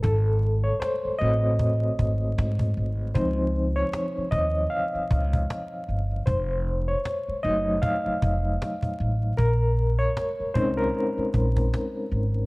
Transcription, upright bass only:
X:1
M:4/4
L:1/8
Q:"Swing 16ths" 1/4=77
K:Dblyd
V:1 name="Upright bass" clef=bass
A,,,2 z =A,,,2 _A,,, A,, A,,, | D,,2 z E,, z D,, z G,,, | F,,,2 z _G,,, z F,,, z =A,,, | B,,,2 z C,, z B,,, z A,,, |]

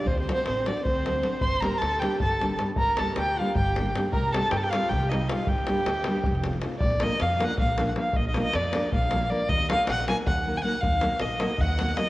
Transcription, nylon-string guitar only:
X:1
M:7/8
L:1/8
Q:1/4=156
K:none
V:1 name="Nylon-string guitar"
z [^F,A,D^F] z [F,A,DF] z [F,A,DF] [F,A,DF] | z [G,_B,DG] z [G,B,DG] z [G,B,DG] [G,B,DG] | z [G,_B,DG] z [G,B,DG] z [G,B,DG] [G,B,DG] | z [G,C_EG] z [G,CEG] z [G,CEG] [G,CEG] |
z [G,_B,DG] z [G,B,DG] z [A,C_EF] [A,CEF] | z [F,_B,DF_B] z [F,B,DFB] z [F,B,DFB] [F,B,DFB] | z [F,_B,DF_B] z [F,B,DFB] z [F,B,DFB] [F,B,DFB] | z [_G,_B,_E_G_B] z [G,B,EGB] z [G,B,EGB] [G,B,EGB] |
z [_G,_B,_E_G_B] z [G,B,EGB] z [G,B,EGB] [G,B,EGB] |]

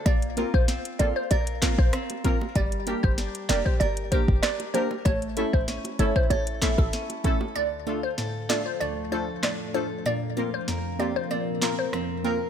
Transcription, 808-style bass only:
X:1
M:4/4
L:1/16
Q:1/4=96
K:Dm
V:1 name="808-style bass" clef=bass
B,,,3 B,,,2 z A,,, z B,,,3 B,,, z4 | G,,,3 G,,,2 z F,,, z G,,,3 G,,, z4 | A,,,3 A,,,2 z G,,, z A,,,3 A,,, z4 | z16 |
z16 |]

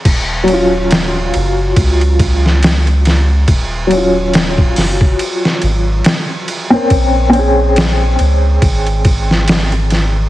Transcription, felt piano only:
X:1
M:4/4
L:1/16
Q:"Swing 16ths" 1/4=70
K:Ebdor
V:1 name="Felt piano"
z2 [G,DF]12- [G,DF]2- | [G,DF]2 [G,DF]12- [G,DF] [CDB]- | [CDB]2 [CDA]12- [CDA]2 |]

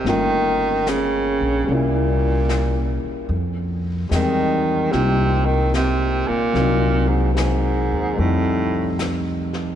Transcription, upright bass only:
X:1
M:4/4
L:1/8
Q:"Swing" 1/4=74
K:Cphr
V:1 name="Upright bass" clef=bass
G,,,3 B,,, C,,3 z | F,,2 =E,,2 C,,3 z | C,,3 E,, F,,4 |]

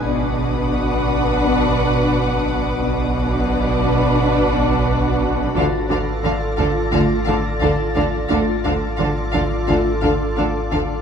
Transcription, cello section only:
X:1
M:4/4
L:1/8
Q:1/4=87
K:Bmix
V:1 name="Cello section" clef=bass
B,,8 | B,,8 | =D, D, D, D, D, D, D, D, | =D, D, D, D, D, D, D, D, |]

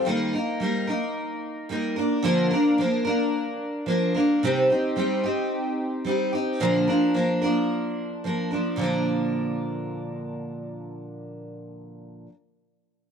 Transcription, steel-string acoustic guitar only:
X:1
M:4/4
L:1/8
Q:"Swing 16ths" 1/4=110
K:Bb
V:1 name="Steel-string acoustic guitar"
[E,G,B,EB] [B,EB] [G,B,EB] [B,EB]3 [G,B,EB] [B,DB] | [D,F,B,DB] [B,DB] [F,B,DB] [B,DB]3 [F,B,DB] [B,DB] | [C,G,CEG] [CEG] [G,CEG] [CEG]3 [G,CEG] [CEG] | [B,,D,F,B,DB] [F,B,DB] [F,B,DB] [F,B,DB]3 [F,B,DB] [F,B,DB] |
[B,,D,F,B,DB]8- | [B,,D,F,B,DB]8 |]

